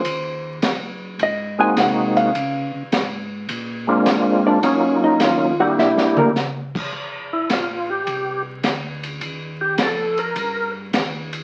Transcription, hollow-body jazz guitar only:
X:1
M:4/4
L:1/8
Q:"Swing" 1/4=105
K:Ebdor
V:1 name="Hollow-body jazz guitar"
c2 z2 e a g f- | f2 z4 z [=D=d] | [Dd] [Ee] [Ff] [Gg] [=E=e] [B,B] z2 | [K:F] z8 |
z8 |]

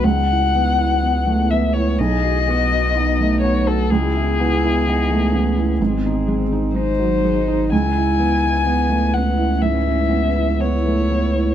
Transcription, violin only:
X:1
M:4/4
L:1/16
Q:1/4=62
K:C#m
V:1 name="Violin"
f6 e c d6 c A | G8- G2 z2 ^B4 | g6 f2 e4 c4 |]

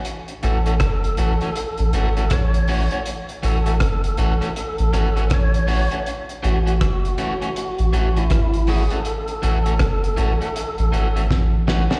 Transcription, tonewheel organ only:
X:1
M:4/4
L:1/16
Q:"Swing 16ths" 1/4=80
K:A
V:1 name="Tonewheel organ"
z2 A6 A4 c4 | z2 A6 A4 c4 | z2 F6 F3 E3 G A- | A12 z4 |]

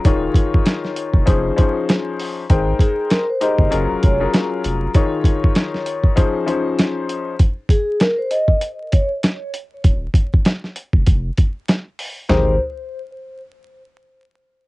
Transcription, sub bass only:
X:1
M:4/4
L:1/16
Q:"Swing 16ths" 1/4=98
K:Ab
V:1 name="Sub bass" clef=bass
E,,,2 z4 z F,,, F,,,2 z6 | A,,,2 z4 z G,,, _G,,, F,,, F,,,2 z2 F,,,2 | z16 | z16 |
E,,,2 z4 z F,,, F,,,2 z6 | A,,,2 z12 z2 |]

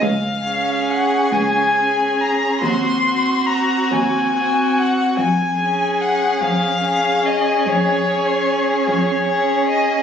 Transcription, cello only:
X:1
M:12/8
L:1/8
Q:3/8=48
K:Db
V:1 name="Cello" clef=bass
D,,3 D,,3 E,,3 E,,3 | F,,3 F,,3 F,,3 F,,3 |]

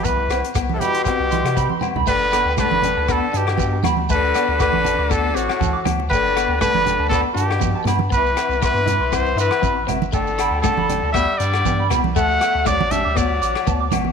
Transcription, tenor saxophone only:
X:1
M:4/4
L:1/16
Q:"Swing 16ths" 1/4=119
K:G
V:1 name="Tenor saxophone" clef=bass
E,3 z2 z/2 C,/2 B,,2 B,,6 z2 | D,4 D,4 D,2 B,,4 z2 | D,4 D,4 D,2 A,,4 z2 | D,4 D,4 D,2 B,,4 z2 |
E,4 E,4 E,2 E,4 z2 | D,4 D,4 G,2 G,4 z2 | A,4 F,2 G,2 F,6 z2 |]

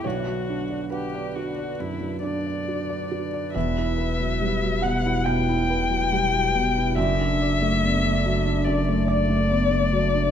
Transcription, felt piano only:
X:1
M:4/4
L:1/16
Q:1/4=70
K:Edor
V:1 name="Felt piano"
c4 B6 d6 | e6 f2 g8 | e8 d2 d6 |]
V:2 name="Felt piano"
B,,, F, D d f d F d F,, F, D d F d F d | E,, E B F, G, F, B,, E B,, E B F, G, F, B,, E | F,, D d A, B, A, F, D F,, A,2 A, B, A, F, D |]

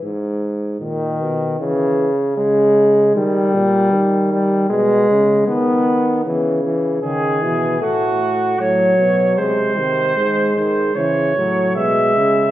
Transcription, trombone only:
X:1
M:4/4
L:1/8
Q:1/4=77
K:C#m
V:1 name="Trombone" clef=bass
z2 D,2 C,2 G,2 | =G,3 G, ^G,2 B,2 | C,2 D, E, A, z F,2 | G, D, G,2 E, F, G,2 |]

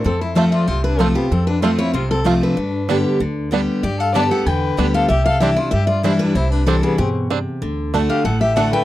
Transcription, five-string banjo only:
X:1
M:4/4
L:1/8
Q:1/4=190
K:C
V:1 name="Five-string banjo"
z2 [A,CF] z3 [A,CF] z | z2 [A,CF] z3 [A,CF] z | z2 [G,B,D] z3 [G,B,D] z | z2 [G,B,D] z3 [G,B,D] z |
z2 [G,CD] z3 [G,CD] z | z2 [G,CD] z3 [G,CD] z | z2 [A,D] z3 [A,D] z |]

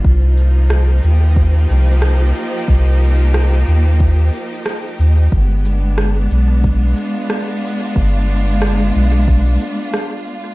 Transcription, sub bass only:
X:1
M:4/4
L:1/8
Q:1/4=91
K:Cm
V:1 name="Sub bass" clef=bass
C,,3 E,,2 C,,2 z | C,,3 E,,2 z2 E,, | G,,,3 =B,,,2 z3 | G,,,3 =B,,,2 z3 |]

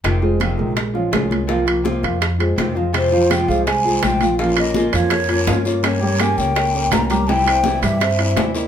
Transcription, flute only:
X:1
M:4/4
L:1/8
Q:1/4=166
K:Fm
V:1 name="Flute"
z8 | z8 | c2 g f a2 g2 | f e2 d4 z |
d2 a g3 b b | g3 =e4 z |]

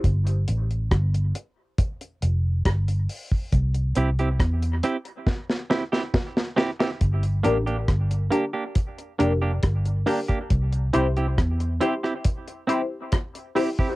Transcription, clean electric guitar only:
X:1
M:4/4
L:1/16
Q:1/4=69
K:Gdor
V:1 name="Clean electric guitar"
z16 | z2 [CEG] [CEG] z2 [CEG] z3 [CEG] [CEG] z2 [CEG] [CEG] | z2 [B,DG] [B,DG] z2 [B,DG] [B,DG] z2 [B,DG] [B,DG] z2 [B,DG] [B,DG] | z2 [CEG] [CEG] z2 [CEG] [CEG] z2 [CEG] z3 [CEG] [CEG] |]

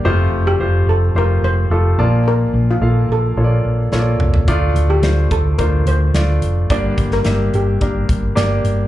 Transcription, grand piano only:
X:1
M:4/4
L:1/16
Q:1/4=108
K:Bblyd
V:1 name="Grand piano"
[A,FGc]3 z [A,FGc]3 z [A,FGc]3 z [A,FGA]2 [B,Fda]2- | [B,Fda]2 z2 [B,FAf]3 z [B,FA_d=d]3 z [B,FA_d=d]3 z | [A,DFd]3 z [A,DFc]3 z [A,DFc]3 z [A,DFd]3 z | [B,DGd]3 z [B,DGe]3 z [B,DGB]3 z [B,DGd]3 z |]
V:2 name="Grand piano" clef=bass
C,6 z8 [B,,F,]2- | [B,,F,]4 z12 | A,,6 z8 z2 | [G,,D,]6 z8 z2 |]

